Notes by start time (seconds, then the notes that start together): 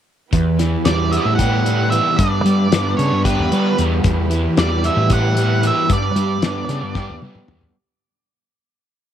0.31 E2 B3 E4 G4 B4, kick, closed hi-hat
0.59 E3, snare, closed hi-hat
0.85 E2 G3 D5, snare, closed hi-hat
1.11 B3 E5, closed hi-hat
1.16 D5
1.23 A2 E5
1.35 G4 F#5, kick, closed hi-hat
1.39 snare
1.65 G3, closed hi-hat
1.90 E3 E5, closed hi-hat
2.16 G2 B3 D4 G4 B4 D5, kick, closed hi-hat
2.45 G3, closed hi-hat
2.72 G2 B3, snare, closed hi-hat
2.97 C#3 D4 C#5, closed hi-hat
3.12 G2
3.24 G4 B4, kick, closed hi-hat
3.38 E2
3.52 G3 B3, closed hi-hat
3.78 E2 G3, closed hi-hat
4.04 E2 E4 B4, kick, closed hi-hat
4.30 E3, closed hi-hat
4.57 E2 G3 D5, snare, closed hi-hat
4.84 E4 E5, snare, closed hi-hat
4.96 A2
5.10 G4 F#5, kick, closed hi-hat
5.37 G3, closed hi-hat
5.63 E3 E5, closed hi-hat
5.89 G2 D4, kick, closed hi-hat
5.93 D5
6.16 G3, closed hi-hat
6.42 G2 B3, snare, closed hi-hat
6.69 C#3 D4, snare, closed hi-hat
6.83 G2
6.95 G4, kick, snare
7.09 E2
7.22 G3 B3, high tom
7.35 mid tom
7.48 E2 G3, mid tom
7.61 floor tom